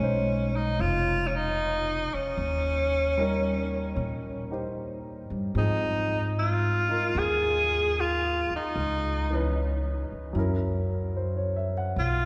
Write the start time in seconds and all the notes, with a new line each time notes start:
Already playing: C#4
0.00 B1 G#3 C#4 D#4 C5
0.56 D#4
0.79 F1 F4
1.27 C#4
1.36 D#4
2.14 C#4, muted upright bass stroke
2.37 D#2
3.17 G3 C#4 D#4 A#4
3.96 A#2
4.50 D#4 G4 C5
5.30 G2
5.55 G#2 F3 C4 D#4 G#4
6.39 F4
6.88 D#4 F4 A#4
7.15 D#2 G#4
8.00 F4
8.50 muted upright bass stroke
8.56 D#4
8.76 C#2
9.30 E3 C#4 D#4
9.35 B4
10.12 muted upright bass stroke
10.33 F#2 F#3 C#4 E4
10.39 A#4
11.17 C5
11.37 C#5
11.56 E5
11.77 F#5
11.96 B1 F4